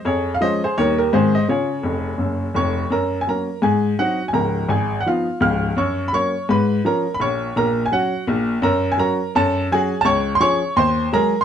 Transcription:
X:1
M:4/4
L:1/16
Q:"Swing" 1/4=168
K:Db
V:1 name="Upright piano"
[Ad]3 f [ce]2 [Ac]2 [Bd]2 [=GB]2 [Ac]2 [ce]2 | [Ad]12 [dd']4 | [K:F#] [Aa]3 g [Aa]4 [Gg]4 [Ff]3 g | [Aa]4 [Gg]3 f [Ee]4 [ee']4 |
[cc']3 b [cc']4 [Bb]4 [Aa]3 b | [cc']4 [Aa]3 g [Ff]4 z4 | [K:Gblyd] [Bb]3 a [Bb]4 [=A=a]4 [_A_a]3 =a | [dd']3 c' [dd']4 [cc']4 [Bb]3 c' |]
V:2 name="Upright piano" clef=bass
F,,4 [F,A,D]4 [E,,=G,B,E]4 [A,,E,A,CE]4 | [D,F]4 [F,,,F,,]4 [G,,,G,,]4 [F,,,F,,]4 | [K:F#] F,,4 [F,A,C]4 G,,4 [F,^B,D]4 | [C,,,C,,]4 G,,,4 [E,B,D]4 [C,,,C,,]4 |
F,,4 [F,A,C]4 G,,4 [E,C]4 | [A,,,A,,]4 [A,,,A,,]4 [F,C]4 [A,,,A,,]4 | [K:Gblyd] G,,4 [G,DG]4 G,,4 [G,DG]4 | D,,4 [F,DA]4 E,,4 [G,A,A]4 |]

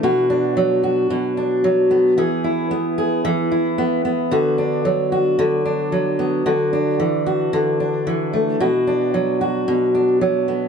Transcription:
X:1
M:4/4
L:1/8
Q:"Swing 16ths" 1/4=112
K:Bdor
V:1 name="Steel-string acoustic guitar"
[B,,F] D F, F B,, D F, B, | [E,G] E B, G E, E B, B, | [D,F] D F, F D, D F, B, | [D,F] D E, F D, D E, A, |
[B,,F] D F, F B,, D F, B, |]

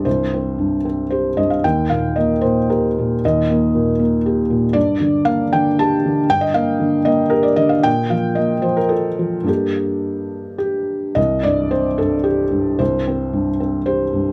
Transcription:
X:1
M:3/4
L:1/16
Q:1/4=114
K:Cdor
V:1 name="Felt piano"
c6 z2 c2 e f | g2 f2 e2 c2 B4 | e6 z6 | d4 f2 g2 a4 |
g e f4 e2 B d e f | g2 f2 e2 c B A4 | G8 G4 | e2 d2 c2 A2 G4 |
c6 z2 c4 |]
V:2 name="Felt piano" clef=bass
[C,,G,,]2 C2 G,,2 C2 G2 G,,2 | E,,2 B,,2 B,2 B,,2 G2 B,,2 | E,,2 B,2 B,,2 B,2 G2 B,,2 | G,,2 D,2 B,2 D,2 G2 D,2 |
G,,2 B,2 D,2 B,2 G2 D,2 | B,,2 F,2 B,2 F,2 F2 F,2 | [G,,B,DA]12 | C,,2 G,,2 C2 G,,4 G,,2 |
C,,2 C2 G,,2 C2 G2 G,,2 |]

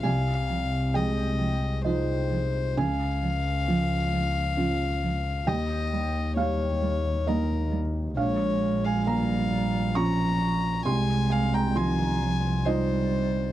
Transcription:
X:1
M:3/4
L:1/16
Q:1/4=67
K:Fm
V:1 name="Violin"
f4 e4 c4 | f12 | e4 d4 B2 z2 | d3 f f4 b4 |
a2 f g a4 c4 |]
V:2 name="Felt piano"
a4 g4 e4 | a12 | g4 f4 e2 z2 | f3 a b4 d'4 |
c'2 a b c'4 e4 |]
V:3 name="Felt piano"
C,,4 A,4 [EF]4 | D,,4 F,4 [DF]4 | E,,4 G,4 [B,E]4 | B,,,4 B,4 [DF]4 |
C,,4 F,4 [EF]4 |]
V:4 name="Cello" clef=bass
F,2 F,2 F,2 F,2 F,2 F,2 | F,2 F,2 F,2 F,2 F,2 F,2 | G,2 G,2 G,2 G,2 G,2 G,2 | A,4 G,4 F,4 |
A,4 E,2 F,2 G,4 |]
V:5 name="Double bass" clef=bass
C,,12 | D,,12 | E,,12 | B,,,12 |
C,,12 |]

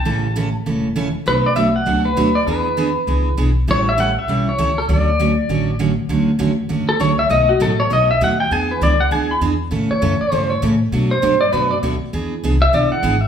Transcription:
X:1
M:4/4
L:1/8
Q:"Swing" 1/4=199
K:D
V:1 name="Pedal steel guitar"
a3 z4 z | B d e f2 B2 d | B6 z2 | c e f e2 c2 A |
d6 z2 | z4 z A c e | ^d F A c d e f g | ^g B d f g b z2 |
z c2 d =c ^c z2 | z =c2 d B d z2 | z3 e d f2 e |]
V:2 name="Steel-string acoustic guitar"
[C,E,A,CA] z [C,E,A,CA] z [C,E,A,CA] z [C,E,A,CA] z | [B,,F,A,DF] z [B,,F,A,DF] z [B,,F,A,DF] z [B,,F,A,DF] z | [E,B,D^G] z [E,B,DG] z [E,B,DG] z [E,B,DG] z | [E,G,CEA] z [E,G,CEA] z [E,G,CEA] z [E,G,CEA] z |
[D,F,A,CF] z [D,F,A,CF] z [D,F,A,CF] z [D,F,A,CF] z | [D,F,A,CF] z [D,F,A,CF] z [D,F,A,CF] z [D,F,A,CF] z | [B,,F,A,^DF] z [B,,F,A,DF] z [B,,F,A,DF] z [B,,F,A,DF] z | [E,B,D^G] z [E,B,DG] z [E,B,DG] z [E,B,DG] z |
[C,E,A,CA] z [C,E,A,CA] z [C,E,A,CA] z [C,E,A,CA] z | [B,,F,A,DF] z [B,,F,A,DF] z [B,,F,A,DF] z [B,,F,A,DF] z | [E,B,D^G] z [E,B,DG] z [E,B,DG] z [E,B,DG] z |]
V:3 name="Upright bass" clef=bass
A,,,4 E,,,4 | B,,,4 C,,2 D,,2 | E,,4 C,,2 B,,,2 | A,,,4 B,,,2 C,,2 |
D,,4 A,,,4 | D,,2 E,,2 F,, z C,,2 | B,,,2 A,,,2 B,,,2 ^D,,2 | E,,2 C,,2 D,,2 E,,2 |
A,, z F,, z G,,2 A,,2 | B,,2 G,,2 F,,2 D,, z | E,,2 =C,,2 B,,, z ^G,,,2 |]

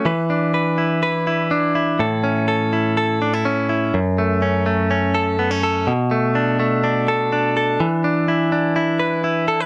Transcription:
X:1
M:4/4
L:1/16
Q:1/4=124
K:F#phr
V:1 name="Clean electric guitar"
[E,B]2 D2 B2 E2 B2 E2 D2 E2 | [A,,A]2 C2 A2 E2 A2 D E C2 E2 | F,,2 A,2 C2 A,2 C2 A2 B, C A2 | B,,2 A,2 D2 A,2 D2 A2 D2 A2 |
E,2 D2 E2 D2 E2 B2 E2 A B |]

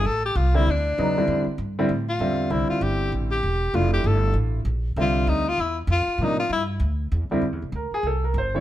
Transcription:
X:1
M:4/4
L:1/8
Q:"Swing" 1/4=195
K:F
V:1 name="Tenor saxophone"
A G F E D4- | D2 z3 F3 | E F G2 z G3 | F G A2 z4 |
F2 _E F =E z F2 | _E F =E z4 z | z8 |]
V:2 name="Grand piano"
z3 [D,G,CE] z2 [_D,_G,=B,_E] [=D,=G,C=E]- | [D,G,CE] z2 [D,G,CE] z2 [D,G,Ce]2 | [D,G,CE]4- [D,G,CE] z3 | [A,DEF]4- [A,DEF] z3 |
[D,G,Ce]3 z4 z | [C,F,B,D] z6 [F,,D,G,CE] | z2 B _A =A B c [D,G,CE_d] |]
V:3 name="Upright bass" clef=bass
A,,,2 C,,2 D,,2 E,,2 | F,, z G,,2 A,,2 E,,2 | C,, z G,,,2 A,,,2 E,,,2 | F,,,2 G,,,2 A,,,2 B,,,2 |
C,,2 D,,2 E,,2 F,, z | A,,2 G,,2 D,,2 E,, z | (3F,, E,, C,, D,, z C,,2 G,,,2 |]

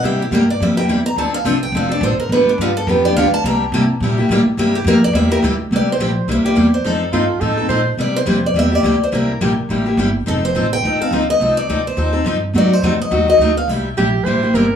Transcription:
X:1
M:4/4
L:1/16
Q:"Swing" 1/4=211
K:Cmix
V:1 name="Steel-string acoustic guitar"
e2 G2 B2 d2 e2 g2 z2 b2 | a2 f2 e2 g2 f2 d2 c2 B2 | =B2 D2 F2 A2 B2 d2 f2 a2 | b12 z4 |
e2 G2 B2 d2 e2 B2 z4 | d2 c6 e2 d4 c2 | A8 z8 | d2 c4 d2 e2 d4 c2 |
B8 z8 | A2 c4 g4 f4 _e2- | _e2 d4 c4 z6 | d2 c4 ^d4 d4 f2 |
e8 z8 |]
V:2 name="Soprano saxophone"
z16 | z16 | z16 | z16 |
z16 | z16 | z4 F4 A4 c3 z | z16 |
z16 | z16 | z16 | z16 |
z4 G4 c4 B3 z |]
V:3 name="Steel-string acoustic guitar"
[C,G,B,EG]2 z2 [C,G,B,EG]2 z2 [C,G,B,EG]2 [B,EG]2 [C,G,B,EG]2 z2 | [D,F,CDA]2 z2 [D,F,CDA]2 z2 [D,F,CDA]2 [CDA]2 [D,F,CDA]2 z2 | [D,F,=B,DG]2 z2 [D,F,B,DG]2 z2 [D,F,B,DG]2 [B,DG]2 [D,F,B,DG]2 z2 | [C,G,B,EG]2 z2 [C,G,B,EG]2 z2 [C,G,B,EG]2 [B,EG]2 [C,G,B,EG]2 z2 |
[C,G,B,EG]2 z2 [C,G,B,EG]2 z2 [C,G,B,EG]2 [B,EG]2 [C,G,B,EG]2 z2 | [C,G,B,EG]2 z2 [C,G,B,EG]2 z2 [C,G,B,EG]2 [B,EG]2 [C,G,B,EG]2 z2 | [F,C_EA]2 z2 [F,CEA]2 z2 [F,CEA]2 [CEA]2 [F,CEA]2 z2 | [C,G,B,EG]2 z2 [C,G,B,EG]2 z2 [C,G,B,EG]2 [B,EG]2 [C,G,B,EG]2 z2 |
[C,G,B,EG]2 z2 [C,G,B,EG]2 z2 [C,G,B,EG]2 [B,EG]2 [C,G,B,EG]2 z2 | [F,C_EA]2 z2 [F,CEA]2 z2 [F,CEA]2 [CEA]2 [F,CEA]2 z2 | [F,C_EA]2 z2 [F,CEA]2 z2 [F,CEA]2 [CEA]2 [F,CEA]2 z2 | [C,^F,A,^D^F]2 z2 [C,F,A,DF]2 z2 [C,F,A,DF]2 [A,DF]2 [C,F,A,DF]2 z2 |
[C,G,B,EG]2 z2 [C,G,B,EG]2 z2 [C,G,B,EG]2 [B,EG]2 [C,G,B,EG]2 z2 |]
V:4 name="Upright bass" clef=bass
C,4 G,,4 F,,4 E,,4 | D,,4 C,,4 F,,,4 A,,,2 z2 | G,,,2 z2 G,,4 F,,4 D,,2 z2 | C,,4 C,4 B,,4 A,,2 z2 |
G,,4 F,,4 E,,4 D,,4 | C,,4 B,,,4 C,,2 z2 E,,4 | F,,4 G,,4 A,,4 B,,4 | C,4 F,,4 E,,4 D,,4 |
C,,4 B,,,2 z2 A,,,4 G,,,4 | F,,,4 A,,,4 D,,2 z2 _D,,4 | C,,4 D,,4 _E,,4 G,,4 | ^F,,4 =F,,2 z2 ^D,,4 =D,,4 |
C,,4 B,,,4 A,,,4 G,,,4 |]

